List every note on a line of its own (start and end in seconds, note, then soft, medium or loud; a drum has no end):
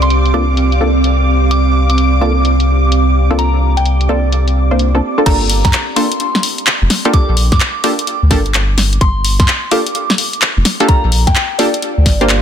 0.00 5.01 C2 medium
0.00 0.32 A#3 medium
0.00 0.32 C4 medium
0.00 5.26 C4 medium
0.00 0.32 D4 medium
0.00 0.32 F4 medium
0.00 5.26 G4 medium
0.00 0.32 A4 medium
0.00 5.26 D5 medium
0.00 5.26 F5 medium
0.00 0.18 C6 medium
0.00 5.27 D6 medium
0.00 closed hi-hat medium
0.10 closed hi-hat medium
0.26 closed hi-hat soft
0.34 0.43 A#3 loud
0.34 0.43 C4 medium
0.34 0.43 D4 medium
0.34 0.43 F4 medium
0.34 0.43 A4 loud
0.34 1.44 D6 medium
0.57 closed hi-hat medium
0.72 closed hi-hat soft
0.81 0.90 A#3 medium
0.81 0.90 C4 medium
0.81 0.90 D4 medium
0.81 0.90 F4 medium
0.81 0.90 A4 medium
1.04 closed hi-hat medium
1.51 1.70 D6 loud
1.51 closed hi-hat medium
1.90 2.05 D6 medium
1.90 closed hi-hat medium
1.98 closed hi-hat medium
2.21 2.31 A#3 medium
2.21 2.31 C4 medium
2.21 2.31 D4 medium
2.21 2.31 F4 medium
2.21 2.31 A4 medium
2.21 3.32 D6 medium
2.45 closed hi-hat medium
2.60 closed hi-hat soft
2.92 closed hi-hat medium
3.30 4.07 A#3 medium
3.30 4.07 C4 medium
3.30 4.07 D4 medium
3.30 4.07 F4 medium
3.30 4.07 A4 loud
3.39 3.58 A#5 medium
3.39 closed hi-hat medium
3.77 3.93 G5 medium
3.77 closed hi-hat medium
3.86 closed hi-hat medium
4.01 closed hi-hat soft
4.09 4.18 A#3 medium
4.09 4.18 C4 medium
4.09 4.18 D4 medium
4.09 4.18 F4 medium
4.09 4.18 A4 loud
4.09 5.19 D5 medium
4.32 closed hi-hat medium
4.48 closed hi-hat soft
4.71 4.91 A#3 medium
4.71 4.91 C4 medium
4.71 4.91 D4 medium
4.71 4.91 F4 medium
4.71 4.91 C5 medium
4.79 closed hi-hat medium
4.94 5.00 A#3 medium
4.94 5.00 C4 medium
4.94 5.00 D4 medium
4.94 5.00 F4 medium
4.94 5.00 A4 medium
5.18 5.23 A#3 medium
5.18 5.23 C4 medium
5.18 5.23 D4 medium
5.18 5.23 F4 medium
5.18 5.23 A4 loud
5.26 5.66 G1 loud
5.26 5.93 A#3 loud
5.26 5.93 D4 medium
5.26 5.93 F4 medium
5.26 5.93 G4 medium
5.26 5.93 A4 loud
5.26 5.45 A#5 loud
5.26 kick loud
5.26 closed hi-hat medium
5.26 crash loud
5.50 open hi-hat loud
5.65 5.72 G2 medium
5.65 5.80 A#5 loud
5.65 kick loud
5.65 snare medium
5.65 closed hi-hat medium
5.73 clap loud
5.73 closed hi-hat medium
5.96 6.06 A#3 medium
5.96 6.06 D4 medium
5.96 6.06 F4 medium
5.96 6.06 G4 medium
5.96 6.06 A4 loud
5.96 7.07 C6 medium
5.96 open hi-hat medium
6.12 closed hi-hat medium
6.20 closed hi-hat medium
6.35 snare medium
6.43 open hi-hat loud
6.58 closed hi-hat soft
6.67 clap loud
6.67 closed hi-hat medium
6.82 6.89 F1 medium
6.90 snare medium
6.90 open hi-hat medium
7.05 7.82 A#3 medium
7.05 7.82 D4 medium
7.05 7.82 F4 medium
7.05 7.82 G4 medium
7.05 7.82 A4 loud
7.05 closed hi-hat soft
7.13 7.33 D6 loud
7.13 kick loud
7.13 closed hi-hat medium
7.28 7.54 A#1 medium
7.37 open hi-hat loud
7.52 7.59 G2 medium
7.52 7.68 D6 medium
7.52 kick loud
7.52 snare medium
7.52 closed hi-hat medium
7.60 clap loud
7.60 closed hi-hat medium
7.84 7.93 A#3 loud
7.84 7.93 D4 medium
7.84 7.93 F4 medium
7.84 7.93 G4 loud
7.84 7.93 A4 loud
7.84 8.94 D6 medium
7.84 open hi-hat medium
7.99 closed hi-hat medium
8.07 closed hi-hat medium
8.22 8.32 D2 medium
8.31 8.99 G1 medium
8.31 8.40 A#3 medium
8.31 8.40 D4 medium
8.31 8.40 F4 medium
8.31 8.40 G4 medium
8.31 8.40 A4 medium
8.31 kick loud
8.31 snare medium
8.31 open hi-hat loud
8.46 closed hi-hat soft
8.54 clap loud
8.54 closed hi-hat medium
8.78 snare medium
8.78 open hi-hat loud
8.93 closed hi-hat soft
9.01 9.20 C6 loud
9.01 kick loud
9.01 closed hi-hat medium
9.25 open hi-hat loud
9.40 9.47 G2 medium
9.40 9.55 C6 medium
9.40 kick loud
9.40 snare medium
9.40 closed hi-hat medium
9.48 clap loud
9.48 closed hi-hat medium
9.71 9.81 A#3 medium
9.71 9.81 D4 medium
9.71 9.81 F4 medium
9.71 9.81 G4 medium
9.71 9.81 A4 loud
9.71 10.82 D6 medium
9.71 open hi-hat medium
9.87 closed hi-hat medium
9.95 closed hi-hat medium
10.10 snare medium
10.18 open hi-hat loud
10.33 closed hi-hat soft
10.42 clap loud
10.42 closed hi-hat medium
10.57 10.64 F1 loud
10.65 snare medium
10.65 open hi-hat medium
10.80 11.57 A#3 loud
10.80 11.57 D4 medium
10.80 11.57 F4 medium
10.80 11.57 G4 medium
10.80 11.57 A4 loud
10.80 closed hi-hat soft
10.89 11.08 A#5 loud
10.89 kick loud
10.89 closed hi-hat medium
11.04 11.29 A#1 medium
11.12 open hi-hat loud
11.27 11.34 G2 medium
11.27 11.43 G5 loud
11.27 kick loud
11.27 snare medium
11.27 closed hi-hat medium
11.35 clap loud
11.35 closed hi-hat medium
11.59 11.68 A#3 loud
11.59 11.68 D4 loud
11.59 11.68 F4 medium
11.59 11.68 G4 loud
11.59 11.68 A4 loud
11.59 12.42 D5 medium
11.59 open hi-hat medium
11.74 closed hi-hat medium
11.82 closed hi-hat medium
11.97 12.07 D2 medium
12.06 12.42 G1 medium
12.06 kick loud
12.06 snare medium
12.06 open hi-hat loud
12.21 12.41 A#3 medium
12.21 12.41 D4 medium
12.21 12.41 F4 medium
12.21 12.41 G4 medium
12.21 12.41 C5 medium
12.21 closed hi-hat soft
12.29 clap loud
12.29 closed hi-hat medium